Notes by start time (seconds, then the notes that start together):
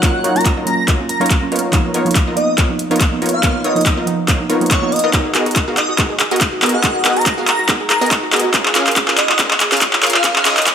Already playing: F#5
0.02 F#3 A#3 C#4 D#4 F4 A#4 C#5, kick, clap, closed hi-hat
0.24 F#3 D#4 F4 A#4 C#5, closed hi-hat
0.35 F#3 A#3 C#4 F4 A#5, closed hi-hat
0.41 closed hi-hat
0.45 kick, clap, closed hi-hat
0.57 F#3 D#4 F4 A#4 D#5
0.65 F#3 A#3 C#4 F4 A#5, closed hi-hat
0.88 F#3 D#4 F4 A#4 C#5, kick, clap, closed hi-hat
0.98 F#3 A#3 C#4 F4
1.09 A#5, closed hi-hat
1.20 F#3 A#3 C#4 D#4 F4 A#4 C#5 A#5, closed hi-hat
1.26 closed hi-hat
1.30 kick, clap, closed hi-hat
1.41 F#3 A#3 C#4 F4
1.52 B3 D#4 F4 A#4 C#5, closed hi-hat
1.56 closed hi-hat
1.59 closed hi-hat
1.72 F3 A#3 B3 D#4 F4 A#4 C#5, kick, clap, closed hi-hat
1.94 B3 D#4 F4 A#4 C#5, closed hi-hat
2.05 F3 A#3 B3 D#4, closed hi-hat
2.11 closed hi-hat
2.15 kick, clap, closed hi-hat
2.27 B3 D#4 F4 A#4 D#5
2.36 F3 A#3 B3 D#4 D#5, closed hi-hat
2.58 B3 D#4 F4 A#4 C#5, kick, clap, closed hi-hat
2.69 F3 A#3 B3 D#4
2.79 closed hi-hat
2.90 F3 A#3 B3 D#4 F4 A#4 C#5, closed hi-hat
2.96 closed hi-hat
3.01 kick, clap, closed hi-hat
3.11 F3 A#3 B3 D#4
3.22 B3 D#4 F4 A#4 C#5, closed hi-hat
3.26 closed hi-hat
3.29 closed hi-hat
3.34 F5
3.42 F3 A#3 B3 D#4 F4 A#4 C#5, kick, clap, closed hi-hat
3.64 B3 D#4 F4 A#4 C#5 D#5, closed hi-hat
3.75 F3 A#3 B3 D#4 D#5, closed hi-hat
3.81 closed hi-hat
3.86 kick, clap, closed hi-hat
3.97 B3 D#4 F4 A#4 D#5
4.06 F3 A#3 B3 D#4, closed hi-hat
4.28 B3 D#4 F4 A#4 C#5, kick, clap, closed hi-hat
4.39 F3 A#3 B3 D#4
4.49 B3 D#4 F4 A#4 C#5, closed hi-hat
4.60 F3 A#3 B3 D#4, closed hi-hat
4.66 closed hi-hat
4.71 C#5, kick, clap, closed hi-hat
4.81 F3 A#3 B3 D#4 F4 A#4 C#5
4.92 D#5, closed hi-hat
4.96 closed hi-hat
4.99 closed hi-hat
5.04 B3 D#4 F4 A#4 D#5
5.13 B3 D#4 F#4 G#4 A#4 D#5, kick, clap, closed hi-hat, riser
5.25 G#4
5.35 B3 F#4 G#4 A#4 D#5, clap, closed hi-hat
5.46 F#4, closed hi-hat
5.51 closed hi-hat
5.56 D#4, kick, clap, closed hi-hat
5.68 B3 F#4 G#4 A#4 F5
5.77 G#4 D#5, clap, closed hi-hat
5.89 F#4
5.98 B3 D#4 F#4 G#4 A#4 D#5, kick, clap, closed hi-hat
6.10 G#4
6.20 G#4, clap, closed hi-hat
6.31 B3 F#4 G#4 A#4 D#5, closed hi-hat
6.36 closed hi-hat
6.41 D#4, kick, clap, closed hi-hat
6.53 F#4
6.62 B3 F#4 G#4 A#4 D#5, clap, closed hi-hat
6.66 closed hi-hat
6.69 closed hi-hat
6.74 F#4 F#5
6.83 B3 D#4 F#4 G#4 A#4 D#5, kick, clap, closed hi-hat
6.95 G#4
7.05 B3 F#4 G#4 A#4 D#5, clap, closed hi-hat
7.17 F#4 A#5, closed hi-hat
7.21 closed hi-hat
7.26 D#4, kick, clap, closed hi-hat
7.38 B3 F#4 G#4 A#4 F5
7.47 G#4 A#5, clap, closed hi-hat
7.59 F#4
7.68 B3 D#4 F#4 G#4 A#4 D#5, kick, clap, closed hi-hat
7.80 G#4
7.90 G#4 A#5, clap, closed hi-hat
8.01 B3 F#4 G#4 A#4 D#5 A#5, closed hi-hat
8.06 closed hi-hat
8.11 D#4, kick, clap, closed hi-hat
8.23 F#4
8.32 B3 F#4 G#4 A#4 D#5, clap, closed hi-hat
8.36 closed hi-hat
8.40 closed hi-hat
8.44 F#4
8.54 C#4 F4 G#4 A#4 F5, kick, clap, closed hi-hat
8.65 G#4, clap
8.75 C#4 F4 G#4 A#4 F5, clap, closed hi-hat
8.87 F4, clap, closed hi-hat
8.91 closed hi-hat
8.96 C#4, kick, clap, closed hi-hat
9.08 C#4 F4 G#4 A#4 G#5, clap
9.17 G#4 D#5, clap, closed hi-hat
9.29 F4, clap
9.39 C#4 F4 G#4 A#4 F5, kick, clap, closed hi-hat
9.51 G#4, clap
9.60 G#4, clap, closed hi-hat
9.72 C#4 F4 G#4 A#4 F5, clap, closed hi-hat
9.77 closed hi-hat
9.81 C#4, kick, clap, closed hi-hat
9.93 F4, clap
10.03 C#4 F4 G#4 A#4 F5, clap, closed hi-hat
10.07 closed hi-hat
10.10 closed hi-hat
10.14 F4 F5, clap
10.24 C#4 F4 G#4 A#4 F5, kick, clap, closed hi-hat
10.36 G#4, clap
10.45 C#4 F4 G#4 A#4 D#5 F5, clap, closed hi-hat
10.57 F4 D#5, clap, closed hi-hat
10.62 closed hi-hat
10.67 C#4, kick, clap, closed hi-hat